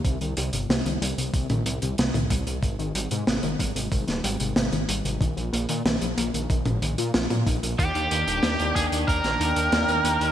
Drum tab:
HH |xxxxxxxxxxxxxxxx|xxxxxxxxxxxxxxxx|xxxxxxxxxxxxxxxx|xxxxxxxxxxxxxxxx|
SD |----o-------o---|----o----o--o---|----o-------o---|----o----o--o---|
T2 |---------o---o--|----------------|---------o---o--|----------------|
BD |o-------o-----o-|o-----o-o-------|o-------o-----o-|o-----o-o-------|